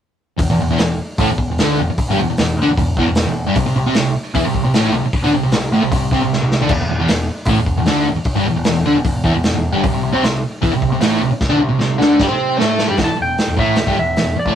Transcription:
0.37 E1 E2, kick, open hi-hat
0.50 E1 E2
0.60 E1 E2
0.69 E1 E2 E3
0.78 E1 E2, snare, open hi-hat
1.18 A1 A2 A3, kick, open hi-hat
1.27 E1 E2
1.38 kick
1.48 E1 E2
1.58 D2 D3 D4, snare, open hi-hat
1.79 E1 E2
1.89 muted picked electric bass stroke, muted distorted electric guitar stroke
1.98 kick, open hi-hat
2.08 G1 G2 G3
2.19 E1 E2
2.28 E1 E2
2.37 E1 E2, snare, open hi-hat
2.57 D2
2.62 D3 D4
2.67 E1 E2
2.77 E1 E2, kick, open hi-hat
2.97 E1 E2 E3, kick
3.07 E1 E2
3.15 snare, open hi-hat
3.27 E1 E2
3.46 G1 G2 G3
3.55 C2 C3, kick, open hi-hat
3.66 C2 C3
3.76 C2 C3
3.86 C2 C3 C4
3.94 C2 C3, snare, open hi-hat
4.34 E2 E3 E4, kick, open hi-hat
4.45 C2 C3
4.54 kick
4.63 C2 C3
4.74 A1 A2 A3, snare, open hi-hat
4.92 C2 C3
5.03 muted picked electric bass stroke, muted distorted electric guitar stroke
5.13 kick, open hi-hat
5.23 D2 D3 D4
5.32 C2 C3
5.43 C2 C3
5.52 C2 C3, snare, open hi-hat
5.72 A1 A2 A3
5.82 C2 C3
5.91 C2 C3, kick, open hi-hat
6.11 C2 C3 C4, kick
6.22 C2 C3
6.33 snare
6.42 C2 C3
6.52 snare
6.61 D2 D3 D4
6.69 E1 E2, kick, crash
6.81 E1 E2
6.89 E1 E2
6.98 E1 E2 E3
7.08 E1 E2, snare, open hi-hat
7.45 A1 A2 A3, kick, open hi-hat
7.56 E1 E2
7.66 kick
7.76 E1 E2
7.86 D2 D3 D4, snare, open hi-hat
8.07 E1 E2
8.15 muted picked electric bass stroke, muted distorted electric guitar stroke
8.24 kick, open hi-hat
8.35 G1 G2 G3
8.46 E1 E2
8.56 E1 E2
8.64 E1 E2, snare, open hi-hat
8.84 D2 D3 D4
8.94 E1 E2
9.05 E1 E2, kick, open hi-hat
9.24 E1 E2 E3, kick
9.34 E1 E2
9.43 snare, open hi-hat
9.54 E1 E2
9.71 G1 G2 G3
9.82 C2 C3, kick, open hi-hat
9.92 C2 C3
10.03 C2 C3
10.13 C2 C3 C4
10.23 C2 C3, snare, open hi-hat
10.61 E2 E3 E4, kick, open hi-hat
10.72 C2 C3
10.82 kick
10.90 C2 C3
11.00 A1 A2 A3, snare, open hi-hat
11.20 C2 C3
11.31 muted distorted electric guitar stroke, muted picked electric bass stroke
11.41 kick, snare
11.49 D2 D3 D4
11.58 C2 C3
11.69 C2 C3
11.79 C2 C3, snare
11.98 D2 D3 D4, snare
12.19 G2 G3 G4, kick, snare
12.28 C3 C4 C5
12.58 A2 A3 A4, snare
12.79 snare
12.88 G2 G3 G4
12.97 E1 E2 E3, kick, snare, open hi-hat
13.04 A5, muted distorted electric guitar stroke
13.11 muted picked electric bass stroke
13.17 E1 E2
13.22 G5
13.38 snare, open hi-hat
13.48 E1 E2
13.57 A1 A2 A3 E5, kick
13.76 E1 E2, snare, open hi-hat
13.86 G1 G2 G3, kick
13.96 E1 E2 E5
14.16 E1 E2, snare, open hi-hat
14.36 D5, muted picked electric bass stroke, muted distorted electric guitar stroke
14.45 A1 A2 A3, kick

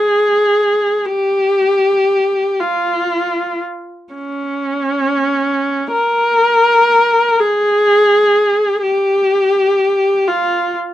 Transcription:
Already playing: G#4
1.05 G4
2.60 F4
4.14 C#4
5.91 A#4
7.40 G#4
8.82 G4
10.27 F4

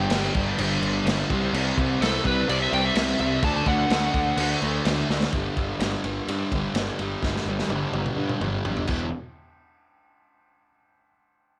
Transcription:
Already playing: G2 D3 G3 G5
0.10 G1 G2 D3, snare, crash
0.14 G3
0.34 G1 D3 G3, kick, crash
0.58 G1 G2 D3 G3, crash
0.82 G1, crash
1.05 G1 G2, snare, crash
1.09 D3 G3
1.30 C2 C3 G3 C4, kick, crash
1.53 C2 C3 G3 C4, crash
1.77 C2 G3 C4, kick, crash
2.00 C2 C3 G3 A4, snare, crash
2.05 C4
2.24 C2 G3 C4 B4, kick, crash
2.48 C2 C3 G3 C4 D5, crash
2.63 E5
2.72 C2 G5, crash
2.85 E5
2.95 C2 C3 G3 C4, snare, crash
3.19 C2 G3 C4 E5, crash
3.42 D2 D3 A3 D4 A5, kick, crash
3.56 A5
3.66 D2 D4 F#5, kick, crash
3.71 A3
3.90 D2 D3 A3 D4, snare, crash
4.13 D2 A3 D4, kick, crash
4.36 D2 D3 A3 D4, crash
4.62 D2, crash
4.85 D2 D3 A3 D4, snare, crash
5.09 D2 A3 D4, snare
5.23 snare
5.32 G1 G2 D3 G3, kick, ride
5.57 G1 G2 D3 G3, kick, ride
5.79 G1 G2, snare, ride
5.83 D3 G3
6.04 G1 G2 D3 G3, ride
6.28 G2 D3 G3, ride
6.52 G1 G2 D3 G3, kick, ride
6.74 G1, snare, ride
6.78 G2 D3 G3
6.99 G1 G2 D3 G3, ride
7.23 G1 G2 D3 G3, kick, snare
7.36 snare
7.45 G1 G2
7.50 D3 G3
7.59 snare
7.69 G1 G2 D3, high tom
7.73 G3
7.92 G1 G2 D3, high tom
7.96 G3
8.06 mid tom
8.16 G2 D3 G3
8.29 mid tom
8.41 G1 G2 D3 G3, mid tom
8.65 G1 G2 D3 G3, mid tom
8.77 floor tom
8.87 E1 E2 B2 E3, kick, crash

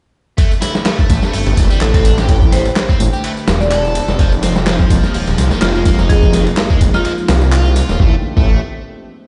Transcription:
0.38 D3 A3 C4 G4 B4, kick, ride, tambourine
0.51 tambourine
0.62 E4, snare, open hi-hat, ride, tambourine
0.75 snare, tambourine
0.86 A3, snare, clap, ride, tambourine
0.99 kick, tambourine
1.10 A1, kick, open hi-hat, ride, tambourine
1.23 snare, tambourine
1.33 G1 A3, open hi-hat, tambourine
1.46 G1, ride, tambourine
1.57 E1, kick, open hi-hat, ride, tambourine
1.70 A1 G3, tambourine
1.81 A1 A3 A4, snare, clap, ride, tambourine
1.94 C4 A4, kick, ride, tambourine
2.05 D4, open hi-hat, tambourine
2.18 G4, snare, ride, tambourine
2.29 kick, ride, tambourine
2.42 kick, tambourine
2.52 G3 C5, snare, open hi-hat, ride, tambourine
2.65 ride, tambourine
2.76 snare, clap, ride, tambourine
2.89 C4, kick, tambourine
3.00 A1, open hi-hat, tambourine
3.13 G4, tambourine
3.24 A3, ride, tambourine
3.37 tambourine
3.48 E1, snare, open hi-hat, ride, tambourine
3.60 D5, snare, tambourine
3.71 A4 D5, clap, ride, tambourine
3.85 tambourine
3.95 open hi-hat, ride, tambourine
4.08 F1, snare, tambourine
4.19 F3 G#3 A#3 D#4, kick, ride, tambourine
4.32 tambourine
4.43 C4, snare, open hi-hat, ride, tambourine
4.56 snare, tambourine
4.67 F3, snare, clap, ride, tambourine
4.80 kick, tambourine
4.90 F1, kick, open hi-hat, ride, tambourine
5.04 snare, tambourine
5.14 D#1 F3, open hi-hat, tambourine
5.27 D#1, ride, tambourine
5.38 C2, snare, open hi-hat, ride, tambourine
5.51 F1 D#3, snare, tambourine
5.61 F1 F3 F4, snare, clap, ride, tambourine
5.75 G#3 F4, tambourine
5.86 A#3, kick, open hi-hat, ride, tambourine
5.99 D#4, snare, tambourine
6.09 F4 G#4, kick, ride, tambourine
6.23 kick, tambourine
6.33 D#3, snare, open hi-hat, ride, tambourine
6.47 ride, tambourine
6.57 snare, clap, ride, tambourine
6.70 G#3, kick, tambourine
6.81 F1, kick, open hi-hat, ride, tambourine
6.94 D#4 F4, snare, tambourine
7.05 F3 F4, ride, tambourine
7.18 tambourine
7.28 C2, snare, open hi-hat, ride, tambourine
7.42 snare, tambourine
7.52 F4, clap, ride, tambourine
7.65 tambourine
7.76 open hi-hat, ride, tambourine
7.89 D#1, snare, tambourine
8.00 A1 D3 A3 B3 C4 G4, kick
8.37 A1 A3, kick

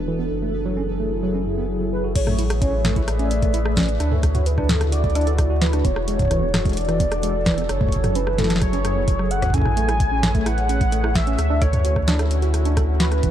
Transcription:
Already playing: E1 E3 B3 D4 F#4 A4 B4
0.08 E3
0.19 B3
0.31 F#1 F#3 E4 G#4
0.42 A3
0.65 F#3
0.77 C#4
1.00 A3
1.23 F#3
1.35 C#4
1.46 F#2
1.58 B3
1.81 F#3
1.92 B4
2.04 F#4
2.15 A1 A3 G#4 B4 C#5 E5, kick, closed hi-hat, crash
2.27 A3, cross-stick, mid tom
2.39 E4, closed hi-hat
2.50 cross-stick, closed hi-hat
2.62 C#4 C#5, kick, closed hi-hat
2.85 A3, cross-stick, snare, closed hi-hat, mid tom
2.96 E4, kick, closed hi-hat
3.08 D5, cross-stick, closed hi-hat
3.19 C#4, closed hi-hat
3.31 closed hi-hat
3.42 A3, kick, closed hi-hat
3.54 E4, closed hi-hat
3.65 cross-stick
3.77 C#4, kick, snare, closed hi-hat
3.80 snare
3.83 snare
3.86 snare, closed hi-hat
4.00 D2 C#3 D3 D4 E4 F#4 C#5, cross-stick, closed hi-hat
4.12 A4, mid tom
4.23 kick, cross-stick, closed hi-hat
4.35 F#4, closed hi-hat, mid tom
4.46 B4, closed hi-hat
4.58 D4, kick, cross-stick
4.69 A4, snare, closed hi-hat, mid tom
4.81 cross-stick, closed hi-hat
4.92 F#4 D5, closed hi-hat
5.04 kick, closed hi-hat
5.10 closed hi-hat
5.15 D4, cross-stick, closed hi-hat
5.21 closed hi-hat
5.27 A4, closed hi-hat
5.38 kick, cross-stick, closed hi-hat
5.50 F#4
5.62 B4, snare, closed hi-hat
5.73 D4, cross-stick, closed hi-hat
5.85 E1 E3 B3 D4 A4 C#5, kick, closed hi-hat
5.96 cross-stick
6.08 G#3, closed hi-hat
6.19 kick, closed hi-hat
6.22 kick
6.25 kick
6.28 kick
6.31 E3, kick, cross-stick, closed hi-hat
6.34 kick
6.37 kick
6.39 B3, kick
6.54 cross-stick, snare, closed hi-hat, mid tom
6.65 G#3, kick, closed hi-hat
6.69 closed hi-hat
6.73 closed hi-hat
6.77 D5, closed hi-hat
6.81 closed hi-hat
6.85 E3, cross-stick, closed hi-hat
6.89 closed hi-hat
7.00 B3, kick, closed hi-hat
7.12 cross-stick, closed hi-hat
7.23 G#3, closed hi-hat
7.46 E3, kick, cross-stick, snare, closed hi-hat
7.54 B3, cross-stick, closed hi-hat
7.62 D5, cross-stick
7.69 F#1 F#3 E4 G#4 C#5, cross-stick, closed hi-hat
7.81 A3, kick, mid tom
7.88 kick, closed hi-hat
7.96 kick
8.04 F#3, cross-stick, closed hi-hat, mid tom
8.15 C#4 B4, closed hi-hat
8.27 cross-stick
8.38 A3 A4, snare, closed hi-hat, mid tom
8.44 snare
8.50 snare, closed hi-hat
8.56 snare
8.61 F#3 C#5, kick, cross-stick, closed hi-hat
8.73 C#4, closed hi-hat
8.85 F#2, cross-stick, closed hi-hat
8.96 B3
9.08 kick, closed hi-hat
9.19 F#3, cross-stick
9.31 F#5, closed hi-hat
9.42 F#4, kick, cross-stick, closed hi-hat
9.46 kick
9.50 A1 C#4, kick
9.54 A3 B4 C#5 G#5, kick, closed hi-hat
9.58 kick
9.62 kick, cross-stick, mid tom
9.77 A3, closed hi-hat
9.88 E4, cross-stick, closed hi-hat
10.00 kick, closed hi-hat
10.12 C#4
10.23 cross-stick, snare, closed hi-hat, mid tom
10.35 A3, kick, closed hi-hat
10.46 E4 F#5, cross-stick, closed hi-hat
10.58 closed hi-hat
10.69 C#4, closed hi-hat
10.81 kick, closed hi-hat
10.92 A3, closed hi-hat
11.04 E4, cross-stick
11.15 E5, kick, snare, closed hi-hat
11.27 C#4, closed hi-hat
11.39 D2 D3 C#4 E4 F#4, cross-stick, closed hi-hat
11.50 D4
11.62 A4 C#5, kick, cross-stick, closed hi-hat
11.73 closed hi-hat, mid tom
11.85 F#4, closed hi-hat
11.96 kick, cross-stick
12.08 D4, snare, closed hi-hat
12.19 A4, cross-stick, closed hi-hat
12.31 closed hi-hat
12.42 F#4, closed hi-hat
12.54 cross-stick, closed hi-hat
12.65 D4, closed hi-hat
12.77 A4, kick, cross-stick, closed hi-hat
13.00 F#4 B4, snare, closed hi-hat
13.12 cross-stick, closed hi-hat
13.23 E1 E3, kick, closed hi-hat

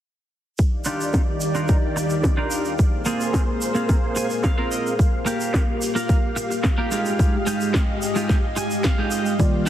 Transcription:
0.58 D#3 G4 D5 F5, kick, shaker
0.85 D4 D#4 F4 G4, shaker
1.01 shaker
1.13 kick, snare, shaker
1.41 shaker
1.55 D4 D#4 F4 A#4, shaker
1.68 kick, shaker
1.96 muted clean electric guitar stroke, shaker
2.10 muted clean electric guitar stroke, shaker
2.24 muted clean electric guitar stroke, kick, snare, shaker
2.37 D4 D#4 F4 A#4
2.51 shaker
2.65 shaker
2.79 A#3 G#4 C5, kick, shaker
3.05 A#3 C4 F4 G#4, shaker
3.20 shaker
3.34 kick, snare, shaker
3.62 shaker
3.75 A#3 C4 F4 G#4, shaker
3.89 kick, snare, shaker
4.16 G#5, muted clean electric guitar stroke, shaker
4.30 muted clean electric guitar stroke, shaker
4.44 F5, muted clean electric guitar stroke, kick, snare, shaker
4.58 A#3 C4 F4 A#4 F5
4.71 D#5, shaker
4.87 shaker
4.99 A#3 G4, kick, shaker
5.26 A#3 F4 G4, shaker
5.40 shaker
5.54 kick, snare, shaker
5.82 shaker
5.95 A#3 F4 A#4, shaker
6.09 kick, shaker
6.36 muted clean electric guitar stroke, shaker
6.50 muted clean electric guitar stroke, shaker
6.64 muted clean electric guitar stroke, kick, snare, shaker
6.78 A#3 F4 G4
6.91 G#3 D#4 F4 G4 D#5, shaker
7.05 shaker
7.19 kick, shaker
7.46 G#3 D#4 F4 G4, shaker
7.61 shaker
7.74 kick, snare, shaker
8.02 shaker
8.15 G#3 D#4 F4 G4, shaker
8.29 kick, snare, shaker
8.56 G#5, muted clean electric guitar stroke, shaker
8.70 muted clean electric guitar stroke, shaker
8.84 F5, muted clean electric guitar stroke, kick, snare, shaker
8.98 G#3 D#4 F4 G4
9.11 D#5, shaker
9.26 shaker
9.38 D#3 G3 A#3 F4 D5 F5, kick, shaker

